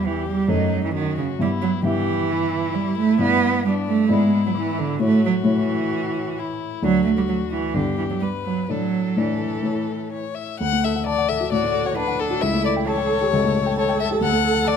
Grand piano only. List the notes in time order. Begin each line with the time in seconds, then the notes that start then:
Already playing: E2 B3 G4 E5
0.48 F#2 A3 A4 D#5
1.39 G2 B3 E4 E5
1.83 G2 B3 E4 E5
3.19 G2 B3 E4 D5
4.09 G#2 B3 E4 D5
4.99 A2 A3 E4 C#5
5.43 A2 A3 E4 C#5
6.82 D2 A3 D4 D5
7.74 G2 B3 D4 D5
8.68 A2 A3 D4 D5
9.16 A2 A3 D4 D5
9.62 A2 A3 E4 C#5
10.61 D2
10.73 A3
10.85 A4
10.96 F#5
11.06 A5
11.18 F#5
11.29 A4
11.41 F#4
11.52 A2
11.64 A3
11.74 A4
11.86 F#5
11.97 A5
12.07 F#5
12.20 A4
12.30 F#4
12.43 C#2
12.53 A3
12.64 A4
12.76 G5
12.87 A5
12.97 G5
13.09 A4
13.21 G4
13.33 C#2
13.44 A3
13.55 A4
13.66 G5
13.78 A5
13.89 G5
13.98 A4
14.11 G4
14.21 D2
14.32 A3
14.44 A4
14.54 F#5
14.65 A5